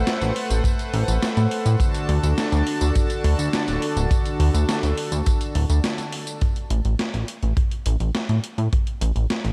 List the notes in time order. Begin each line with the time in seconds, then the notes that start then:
Already playing: A3 A4 B4 C5 F#5
0.07 snare, closed hi-hat, tambourine
0.21 A1, closed hi-hat, tambourine
0.36 open hi-hat
0.50 A1, closed hi-hat, tambourine
0.64 kick, closed hi-hat, tambourine
0.79 closed hi-hat, tambourine
0.93 A1, open hi-hat
1.08 A1, closed hi-hat, tambourine
1.23 snare, closed hi-hat, tambourine
1.37 A2, snare, closed hi-hat, tambourine
1.51 open hi-hat
1.66 A2, closed hi-hat, tambourine
1.80 D3 D4 F#4 A4 A5, kick, closed hi-hat, tambourine
1.95 closed hi-hat, tambourine
2.09 D2, open hi-hat
2.23 D2, closed hi-hat, tambourine
2.38 snare, closed hi-hat, tambourine
2.52 D2, closed hi-hat, tambourine
2.67 open hi-hat
2.81 D2, closed hi-hat, tambourine
2.95 kick, closed hi-hat, tambourine
3.10 closed hi-hat, tambourine
3.24 D2, open hi-hat
3.39 D2, closed hi-hat, tambourine
3.53 snare, closed hi-hat, tambourine
3.68 D1, closed hi-hat, tambourine
3.82 open hi-hat
3.96 D1, closed hi-hat, tambourine
4.11 kick, closed hi-hat, tambourine
4.26 closed hi-hat, tambourine
4.40 D2, open hi-hat
4.54 D2, closed hi-hat, tambourine
4.69 snare, closed hi-hat, tambourine
4.83 D2, closed hi-hat, tambourine
4.98 open hi-hat
5.12 D2, closed hi-hat, tambourine
5.26 kick, closed hi-hat, tambourine
5.41 closed hi-hat, tambourine
5.55 D1, open hi-hat
5.70 D2, closed hi-hat, tambourine
5.84 snare, closed hi-hat, tambourine
5.98 snare, closed hi-hat, tambourine
6.12 open hi-hat
6.27 closed hi-hat, tambourine
6.41 kick, closed hi-hat
6.56 closed hi-hat
6.70 A1, closed hi-hat
6.85 A1, closed hi-hat
6.99 snare, closed hi-hat
7.14 A1, closed hi-hat
7.28 closed hi-hat
7.43 A1, closed hi-hat
7.57 kick, closed hi-hat
7.71 closed hi-hat
7.86 A1, closed hi-hat
8.00 A1, closed hi-hat
8.15 snare, closed hi-hat
8.29 A2, closed hi-hat
8.44 closed hi-hat
8.58 A2, closed hi-hat
8.73 kick, closed hi-hat
8.87 closed hi-hat
9.01 A1, closed hi-hat
9.16 A1, closed hi-hat
9.30 snare, closed hi-hat
9.45 A1, closed hi-hat